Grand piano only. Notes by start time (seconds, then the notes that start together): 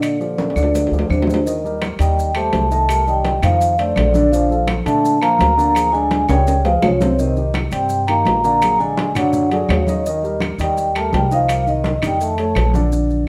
Already playing: D3 D4 D5
0.20 F3 F4 G4
0.57 D3 D4 D5
0.93 F3 F4 G4
1.11 D3 D4 D5
1.46 D#3 D#4 D#5
1.64 G3 G4 A#4
1.99 D#3 D#4 D#5
2.36 G3 G4 C5
2.71 D#3 D#4 D#5
2.89 G3 G4 A#4
3.07 D#3 D#4 D#5
3.43 D#3 D#4 D#5
3.79 A3 A4 C5
4.15 D3 D4 D5
4.33 D3 D4 D5
4.50 F3 F4 A4
4.86 D3 D4 D5
5.22 F3 F4 A#4
5.58 D3 D4 D5
5.75 F3 F4 G#4
5.93 D3 D4 D5
6.29 C#3 C#4 C#5
6.66 F3 F4 G#4
7.01 C3 C4 C5
7.20 C3 C4 C5
7.37 D#3 D#4 G4
7.73 C3 C4 C5
8.09 D#3 D#4 G4
8.45 D3 D4 D5
8.62 F#3 F#4 G#4
8.80 D3 D4 D5
9.16 D3 D4 D5
9.52 F#3 F#4 G#4
9.88 D#3 D#4 D#5
10.07 D#3 D#4 D#5
10.24 G3 G4 A#4
10.59 D#3 D#4 D#5
10.95 G3 G4 A#4
11.31 D#3 D#4 D#5
11.49 G3 G4 A#4
11.67 D#3 D#4 D#5
12.03 D#3 D#4 D#5
12.39 A3 A4 C#5
12.75 D3 D4 D5
12.92 D3 D4 D5